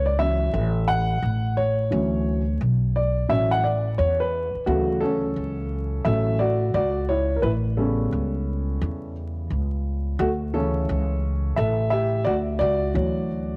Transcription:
Already playing: upright bass C#2
0.06 upright piano D5
0.19 upright piano E3 F#3 C#4 E5
0.54 upright bass A1
0.88 upright piano F#5
1.22 upright bass A1
1.57 upright piano C#5
1.90 upright bass D2, upright piano E3 F#3 C#4
2.61 upright bass B1
2.96 upright piano D5
3.29 upright bass A1, upright piano E3 F#3 C#4 E5
3.51 upright piano F#5
3.64 upright piano D5
3.98 upright bass E2, upright piano C#5
4.20 upright piano B4
4.55 muted upright bass stroke
4.66 upright bass D2, upright piano C#3 E3 F#3 A3 F#4
5.01 upright piano C#4 A4
5.36 upright bass C#2
6.05 upright bass A1, upright piano E3 F#3 C#4 A4 E5
6.39 upright piano F#4 D5
6.74 upright bass C#2, upright piano F#4 D5
7.09 upright piano E4 C#5
7.36 upright piano A#4
7.42 upright bass A1, upright piano E4 B4
7.77 upright piano C#3 G3 B3 C#4 A4
8.12 upright bass C#2
8.81 upright bass E2
9.50 upright bass C#2
10.19 upright bass D2, upright piano A3 F#4
10.53 upright piano C#3 E3 A3 C#4 A4
10.89 upright bass C#2
11.56 upright bass A1, upright piano A4 E5
11.90 upright piano G4 E5
12.25 upright bass D2, upright piano F#4 D5
12.59 upright bass C#2, upright piano F#4 D5
12.94 upright bass D2, upright piano E3 F#3 C#5

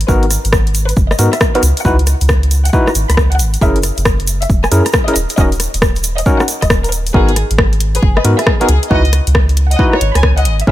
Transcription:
0.01 closed hi-hat
0.08 sub bass G#1, tine electric piano B3 D#4 F#4 A#4, violin section B4, kick, shaker
0.23 closed hi-hat
0.31 cross-stick, closed hi-hat, shaker
0.45 sub bass G#1, closed hi-hat, shaker
0.53 kick, cross-stick, shaker
0.67 closed hi-hat
0.75 closed hi-hat, shaker
0.89 violin section B4, closed hi-hat, shaker
0.97 sub bass F#1, kick, shaker
1.11 violin section D#5, cross-stick, shaker
1.19 sub bass G#2, tine electric piano B3 D#4 F#4 A#4, closed hi-hat, shaker
1.33 violin section E5, cross-stick, closed hi-hat, shaker
1.41 kick, cross-stick, shaker
1.55 tine electric piano B3 D#4 F#4 A#4, violin section B4, closed hi-hat
1.63 sub bass C#2, closed hi-hat, shaker
1.77 closed hi-hat, shaker
1.85 sub bass C#2, tine electric piano D#4 E4 F#4 B4, violin section F#5, kick, shaker
1.99 closed hi-hat
2.07 cross-stick, closed hi-hat, shaker
2.21 sub bass C#2, closed hi-hat, shaker
2.29 kick, cross-stick, shaker
2.43 closed hi-hat
2.51 closed hi-hat, shaker
2.65 violin section F#5, closed hi-hat, shaker
2.73 tine electric piano D#4 E4 F#4 B4, kick, shaker
2.87 violin section A#5, cross-stick, shaker
2.95 sub bass G#1, closed hi-hat, shaker
3.10 sub bass C#2, violin section B5, cross-stick, closed hi-hat, shaker
3.17 kick, cross-stick, shaker
3.32 violin section F#5, closed hi-hat
3.39 sub bass G#1, closed hi-hat, shaker
3.54 closed hi-hat, shaker
3.61 sub bass F#1, tine electric piano C#4 E4 G#4 A#4, violin section E5, kick, shaker
3.76 closed hi-hat
3.83 cross-stick, closed hi-hat, shaker
3.97 sub bass F#1, closed hi-hat, shaker
4.05 kick, cross-stick, shaker
4.20 closed hi-hat
4.27 closed hi-hat, shaker
4.42 violin section E5, closed hi-hat, shaker
4.50 sub bass E1, kick, shaker
4.64 violin section G#5, cross-stick, shaker
4.72 sub bass F#2, tine electric piano C#4 E4 G#4 A#4, closed hi-hat, shaker
4.86 violin section A#5, cross-stick, closed hi-hat, shaker
4.93 kick, cross-stick, shaker
5.08 tine electric piano C#4 E4 G#4 A#4, violin section D#5, closed hi-hat
5.16 sub bass D#1, closed hi-hat, shaker
5.29 closed hi-hat, shaker
5.38 sub bass D#1, tine electric piano C#4 D#4 F#4 A#4, violin section D#5, kick, shaker
5.52 closed hi-hat, shaker
5.60 cross-stick, closed hi-hat, shaker
5.74 sub bass D#1, closed hi-hat, shaker
5.82 kick, cross-stick, shaker
5.96 closed hi-hat, shaker
6.04 closed hi-hat, shaker
6.18 violin section D#5, closed hi-hat, shaker
6.26 tine electric piano C#4 D#4 F#4 A#4, kick, shaker
6.40 violin section F#5, cross-stick, shaker
6.48 closed hi-hat, shaker
6.62 sub bass D#1, violin section D#5, kick, cross-stick, closed hi-hat, shaker
6.70 kick, cross-stick, shaker
6.84 violin section A#4, closed hi-hat, shaker
6.92 closed hi-hat, shaker
7.07 closed hi-hat, shaker
7.14 sub bass G#1, tine electric piano B3 D#4 F#4 A#4, violin section G#4 B4, kick
7.29 closed hi-hat
7.36 cross-stick, closed hi-hat
7.51 sub bass G#1, closed hi-hat
7.58 kick, cross-stick
7.73 closed hi-hat
7.80 closed hi-hat
7.95 violin section G#4 B4, closed hi-hat
8.03 sub bass F#1, kick
8.17 violin section B4 D#5, cross-stick
8.25 sub bass G#2, tine electric piano B3 D#4 F#4 A#4, closed hi-hat
8.39 violin section G#4 E5, cross-stick, closed hi-hat
8.47 kick, cross-stick
8.61 tine electric piano B3 D#4 F#4 A#4, violin section G#4 B4, closed hi-hat
8.69 sub bass C#2, closed hi-hat
8.83 closed hi-hat
8.91 sub bass C#2, tine electric piano D#4 E4 F#4 B4, violin section D#5 F#5, kick
9.05 closed hi-hat
9.13 cross-stick, closed hi-hat
9.27 sub bass C#2, closed hi-hat
9.35 kick, cross-stick
9.49 closed hi-hat
9.57 closed hi-hat
9.71 violin section D#5 F#5, closed hi-hat
9.79 tine electric piano D#4 E4 F#4 B4, kick
9.93 violin section C#5 A#5, cross-stick
10.01 sub bass G#1, closed hi-hat
10.15 sub bass C#2, violin section G#5 B5, cross-stick, closed hi-hat
10.23 kick, cross-stick
10.37 violin section D#5 F#5, closed hi-hat
10.45 sub bass G#1, closed hi-hat
10.60 closed hi-hat
10.67 sub bass F#1, tine electric piano C#4 E4 G#4 A#4, violin section C#5 E5, kick

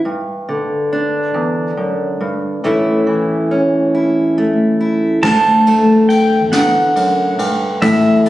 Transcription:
0.05 steel-string acoustic guitar G2
0.49 steel-string acoustic guitar D3
0.93 steel-string acoustic guitar D4
1.34 steel-string acoustic guitar E2
1.77 steel-string acoustic guitar F#2
2.21 steel-string acoustic guitar G2
2.64 steel-string acoustic guitar A2 E3 A3 C#4 E4
3.07 steel-string acoustic guitar E3
3.51 steel-string acoustic guitar C#4
3.95 steel-string acoustic guitar E4
4.38 steel-string acoustic guitar A3
4.81 steel-string acoustic guitar E4
5.23 steel-string acoustic guitar D2, upright bass D2, pedal steel guitar A5, kick, crash
5.67 steel-string acoustic guitar A3, ride
6.09 pedal steel guitar G5, ride
6.52 steel-string acoustic guitar E2, upright bass D3, pedal steel guitar F#5, snare, ride
6.96 steel-string acoustic guitar F#2, ride
7.39 steel-string acoustic guitar G2, ride
7.82 upright bass A1, steel-string acoustic guitar A2, pedal steel guitar E5, kick, ride
8.26 steel-string acoustic guitar A3, ride

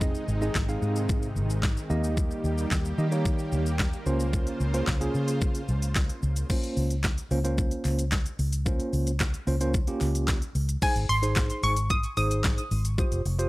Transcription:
Already playing: fingered electric bass F1, supersaw synth G#3 D#4
0.01 supersaw synth C3 D#3, tine electric piano C4 D#4 G#4 D#5, kick, shaker
0.15 shaker
0.28 fingered electric bass G#1, shaker
0.41 tine electric piano C4 D#4 G#4 D#5, shaker
0.55 fingered electric bass G#1, kick, snare, clap, shaker
0.69 tine electric piano C4 D#4 G#4 F5, shaker
0.82 fingered electric bass G#2, shaker
0.96 shaker
1.09 kick, shaker
1.22 shaker
1.36 fingered electric bass G#1, shaker
1.50 shaker
1.63 kick, snare, clap, shaker
1.77 shaker
1.90 fingered electric bass D#2, supersaw synth G3 A#3 G4, tine electric piano A#3 D#4 G4 D#5, shaker
2.04 shaker
2.17 kick, shaker
2.31 shaker
2.44 fingered electric bass D#2, shaker
2.58 shaker
2.71 fingered electric bass D#2, kick, snare, clap, shaker
2.85 shaker
2.98 fingered electric bass D#3, tine electric piano A#3 D#4 G4 D#5, shaker
3.12 tine electric piano A#3 D#4 G4 C#5, shaker
3.25 kick, shaker
3.39 shaker
3.52 fingered electric bass D#2, shaker
3.66 shaker
3.79 kick, snare, clap, shaker
3.93 shaker
4.06 fingered electric bass C#2, supersaw synth C#3 F4 C5, tine electric piano A#3 C#4 F4 C5, shaker
4.20 shaker
4.33 kick, shaker
4.47 closed hi-hat, shaker
4.60 fingered electric bass C#2, shaker
4.74 tine electric piano A#3 C#4 F4 C5, closed hi-hat, shaker
4.87 fingered electric bass C#2, kick, snare, clap, shaker
5.01 tine electric piano A#3 C#4 F4 G#4, closed hi-hat, shaker
5.15 fingered electric bass C#3, shaker
5.28 closed hi-hat, shaker
5.41 kick, shaker
5.55 closed hi-hat, shaker
5.68 fingered electric bass C#2, shaker
5.82 closed hi-hat, shaker
5.96 kick, snare, clap, shaker
6.09 closed hi-hat, shaker
6.23 fingered electric bass C#2, shaker
6.36 closed hi-hat, shaker
6.49 tine electric piano A#3 C#4 F4 C5, kick, crash, shaker
6.63 closed hi-hat, shaker
6.77 fingered electric bass C#2, open hi-hat, shaker
6.90 closed hi-hat, shaker
7.04 kick, snare, clap, shaker
7.18 closed hi-hat, shaker
7.31 fingered electric bass C#2, tine electric piano A#3 C#4 F4 C5, open hi-hat, shaker
7.44 tine electric piano A#3 C#4 F4 C5, closed hi-hat, shaker
7.58 kick, shaker
7.71 closed hi-hat, shaker
7.85 fingered electric bass C#2, clap, open hi-hat, shaker
7.99 closed hi-hat, shaker
8.12 kick, snare, clap, shaker
8.26 closed hi-hat, shaker
8.39 fingered electric bass C#2, open hi-hat, shaker
8.53 closed hi-hat, shaker
8.66 tine electric piano A#3 C#4 F4 C5, kick, shaker
8.80 closed hi-hat, shaker
8.93 fingered electric bass C#2, open hi-hat, shaker
9.07 closed hi-hat, shaker
9.20 kick, snare, clap, shaker
9.34 closed hi-hat, shaker
9.47 fingered electric bass C#2, tine electric piano A#3 C#4 F4 C5, open hi-hat, shaker
9.61 tine electric piano A#3 C#4 F4 C5, closed hi-hat, shaker
9.74 kick, shaker
9.87 tine electric piano A#3 C#4 F4 G4, closed hi-hat, shaker
10.01 fingered electric bass C#2, clap, open hi-hat, shaker
10.15 closed hi-hat, shaker
10.28 kick, snare, clap, shaker
10.42 closed hi-hat, shaker
10.55 fingered electric bass C#2, open hi-hat, shaker
10.69 closed hi-hat, shaker
10.82 tine electric piano D#4 G#4 C5, synth pluck G#5, kick, crash, shaker
10.96 fingered electric bass G#1, closed hi-hat, shaker
11.09 fingered electric bass G#1, synth pluck C6, open hi-hat, shaker
11.22 tine electric piano D#4 G#4 C5, closed hi-hat, shaker
11.36 kick, snare, clap, shaker
11.50 closed hi-hat, shaker
11.63 fingered electric bass G#1, synth pluck C#6, open hi-hat, shaker
11.77 closed hi-hat, shaker
11.90 synth pluck D#6, kick, shaker
12.03 closed hi-hat, shaker
12.17 fingered electric bass G#1, tine electric piano D#4 G#4 C5, synth pluck D#6, open hi-hat, shaker
12.31 closed hi-hat, shaker
12.44 kick, snare, clap, shaker
12.58 closed hi-hat, shaker
12.71 fingered electric bass G#1, open hi-hat, shaker
12.85 closed hi-hat, shaker
12.98 tine electric piano F4 G4 C5, kick, shaker
13.12 fingered electric bass F1, closed hi-hat, shaker
13.25 fingered electric bass F1, open hi-hat, shaker
13.39 tine electric piano F4 G4 C5, closed hi-hat, shaker

